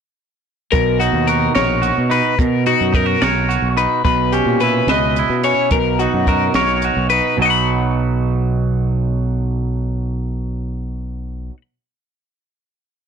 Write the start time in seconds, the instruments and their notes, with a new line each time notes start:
0.72 fingered electric bass B1, clean electric guitar B2 A#4, kick, closed hi-hat
1.00 clean electric guitar D#4 F#4, closed hi-hat
1.13 fingered electric bass D#2
1.27 clean electric guitar F#4 A#4, closed hi-hat
1.55 fingered electric bass A#1, clean electric guitar A#4 C#5, snare, closed hi-hat
1.82 clean electric guitar F#4, closed hi-hat
1.98 fingered electric bass B2
2.09 clean electric guitar D#4 B4, closed hi-hat
2.39 fingered electric bass B2, clean electric guitar B2 A#4, kick, closed hi-hat
2.66 clean electric guitar D#4 F#4, closed hi-hat
2.81 fingered electric bass F#2
2.93 clean electric guitar D#4 A#4, kick, closed hi-hat
3.06 clean electric guitar F#4
3.21 fingered electric bass B1, clean electric guitar A#4 C#5, snare, closed hi-hat
3.49 clean electric guitar F#4, closed hi-hat
3.62 fingered electric bass B1
3.77 clean electric guitar D#4 B4, closed hi-hat
4.05 fingered electric bass B1, clean electric guitar B2 B4, kick, closed hi-hat
4.32 clean electric guitar C#4 G4, closed hi-hat
4.46 fingered electric bass A#2
4.60 clean electric guitar E4 B4, closed hi-hat
4.87 fingered electric bass C#2, clean electric guitar B4 D#5, snare, closed hi-hat
5.16 clean electric guitar E4, closed hi-hat
5.30 fingered electric bass B2
5.44 clean electric guitar C#4 C#5, closed hi-hat
5.71 fingered electric bass B1, clean electric guitar B2 A#4, kick, closed hi-hat
5.99 clean electric guitar D#4 F#4, closed hi-hat
6.14 fingered electric bass F#2
6.27 clean electric guitar F#4 A#4, kick, closed hi-hat
6.54 fingered electric bass B1, clean electric guitar A#4 C#5, snare, closed hi-hat
6.82 clean electric guitar F#4, closed hi-hat
6.97 fingered electric bass B1
7.10 clean electric guitar D#4 B4, closed hi-hat
7.37 fingered electric bass B1, clean electric guitar B2 F#3
7.42 clean electric guitar D#4 F#4 D#5 F#5
7.50 clean electric guitar B5